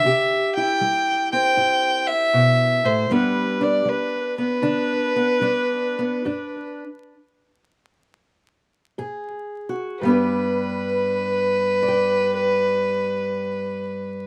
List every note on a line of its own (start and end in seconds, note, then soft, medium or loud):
0.00 0.51 E5 loud
0.05 0.76 C3 medium
0.05 6.25 G4 medium
0.56 1.56 E4 medium
0.56 1.28 G5 loud
0.81 1.52 G3 medium
1.33 2.09 C4 medium
1.33 2.09 G5 loud
1.56 2.28 G2 medium
1.56 3.06 E4 medium
2.07 2.87 E5 loud
2.34 2.84 B2 medium
2.84 3.09 A2 medium
2.84 3.13 C5 medium
3.10 3.81 G2 medium
3.10 3.85 G3 medium
3.10 4.37 B3 medium
3.10 3.61 D4 medium
3.10 3.65 B4 medium
3.61 4.62 D4 medium
3.61 3.90 D5 medium
3.85 4.58 G3 medium
3.85 4.38 B4 medium
4.38 5.15 B3 medium
4.38 6.79 B4 loud
4.62 5.37 D3 medium
4.62 5.41 D4 medium
5.16 5.98 B3 medium
5.41 6.19 G3 medium
5.41 6.25 D4 medium
5.99 6.22 B3 medium
6.25 7.00 G2 medium
6.25 6.83 D4 medium
8.98 9.95 G#2 medium
8.98 9.98 G#4 medium
9.69 9.98 F#4 medium
10.00 14.27 G2 medium
10.00 14.27 G3 medium
10.00 14.27 B4 medium
10.05 14.27 B3 medium
10.05 11.82 D4 medium
10.10 11.88 B4 medium
11.83 14.27 D5 medium
11.88 14.27 G5 medium